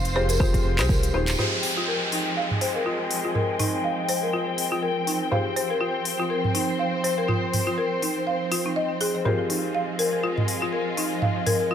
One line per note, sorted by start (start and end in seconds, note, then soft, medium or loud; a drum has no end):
0.00 0.62 F1 medium
0.00 1.34 F3 medium
0.00 1.34 C4 medium
0.00 1.34 F4 medium
0.00 1.38 C5 medium
0.05 closed hi-hat soft
0.05 tambourine soft
0.15 0.33 F4 medium
0.15 0.33 G4 medium
0.15 0.33 G#4 medium
0.15 0.33 C5 medium
0.15 0.28 C5 loud
0.29 0.39 A#4 medium
0.29 closed hi-hat medium
0.29 tambourine medium
0.40 0.75 F4 medium
0.40 0.53 F4 loud
0.40 0.75 G4 medium
0.40 0.75 G#4 medium
0.40 0.75 C5 loud
0.40 kick loud
0.54 kick medium
0.54 closed hi-hat soft
0.54 tambourine soft
0.65 0.80 F1 medium
0.79 0.89 C2 medium
0.79 1.11 F4 medium
0.79 0.88 F4 loud
0.79 1.11 G4 medium
0.79 1.11 G#4 medium
0.79 1.11 C5 loud
0.79 clap medium
0.79 closed hi-hat medium
0.79 tambourine medium
0.89 1.10 C2 loud
0.89 1.02 A#4 medium
0.89 kick loud
0.89 tambourine medium
1.03 closed hi-hat soft
1.03 tambourine soft
1.14 1.35 D#1 medium
1.14 1.27 D#4 medium
1.14 1.37 F4 medium
1.14 1.37 G4 medium
1.14 1.37 G#4 medium
1.14 1.37 C5 medium
1.27 clap medium
1.27 closed hi-hat medium
1.27 tambourine medium
1.38 11.75 F3 medium
1.38 5.31 G#3 medium
1.38 11.75 C4 medium
1.38 5.29 F4 medium
1.38 1.52 F4 medium
1.38 5.29 G4 medium
1.38 5.29 G#4 medium
1.38 5.29 C5 medium
1.38 9.21 G5 medium
1.38 mid tom medium
1.38 downlifter medium
1.63 open hi-hat medium
1.77 1.87 F4 loud
1.88 2.00 A#4 medium
2.12 2.26 D#4 medium
2.12 open hi-hat medium
2.37 2.44 F5 medium
2.51 mid tom medium
2.61 2.74 C5 medium
2.61 open hi-hat medium
2.75 2.85 A#4 medium
2.86 2.99 F4 medium
3.11 open hi-hat medium
3.25 3.34 F4 medium
3.35 3.48 A#4 medium
3.35 mid tom medium
3.60 3.73 D#4 medium
3.60 mid tom medium
3.60 open hi-hat medium
3.84 3.92 F5 medium
4.09 4.22 C5 medium
4.09 open hi-hat medium
4.23 4.32 A#4 medium
4.33 4.47 F4 loud
4.58 open hi-hat medium
4.72 4.82 F4 loud
4.83 4.95 A#4 medium
5.07 5.21 D#4 medium
5.07 open hi-hat medium
5.31 9.23 F4 medium
5.31 9.23 G4 medium
5.31 9.23 G#4 medium
5.31 9.23 C5 medium
5.31 9.24 C5 medium
5.31 5.39 F5 medium
5.31 mid tom medium
5.56 5.69 C5 loud
5.56 open hi-hat medium
5.70 5.80 A#4 medium
5.81 5.94 F4 loud
6.05 open hi-hat medium
6.19 6.29 F4 medium
6.30 6.43 A#4 medium
6.44 mid tom medium
6.55 6.68 D#4 medium
6.55 open hi-hat medium
6.79 6.87 F5 medium
7.04 7.17 C5 medium
7.04 open hi-hat medium
7.18 7.28 A#4 medium
7.28 7.42 F4 medium
7.28 mid tom medium
7.54 mid tom medium
7.54 open hi-hat medium
7.67 7.77 F4 loud
7.78 7.90 A#4 medium
8.02 8.16 D#4 medium
8.02 open hi-hat medium
8.27 8.34 F5 medium
8.52 8.65 F4 medium
8.52 open hi-hat medium
8.66 8.76 D#4 medium
8.76 8.89 D#5 loud
9.01 9.13 G#4 medium
9.01 open hi-hat medium
9.15 9.25 C5 medium
9.25 11.75 G#3 medium
9.25 11.75 F4 medium
9.25 11.75 G4 medium
9.25 11.75 G#4 medium
9.25 9.38 A#4 medium
9.25 11.75 C5 medium
9.25 mid tom medium
9.50 9.63 D#4 medium
9.50 open hi-hat medium
9.75 9.82 F5 medium
9.99 10.12 A#4 loud
9.99 open hi-hat medium
10.13 10.23 A#4 medium
10.23 10.37 F4 medium
10.37 mid tom medium
10.48 open hi-hat medium
10.62 10.72 F4 loud
10.73 10.85 A#4 medium
10.97 11.11 D#4 medium
10.97 open hi-hat medium
11.22 11.30 F5 medium
11.22 mid tom medium
11.46 11.59 A#4 loud
11.46 mid tom medium
11.46 open hi-hat medium
11.60 11.70 A#4 medium
11.71 11.75 F4 loud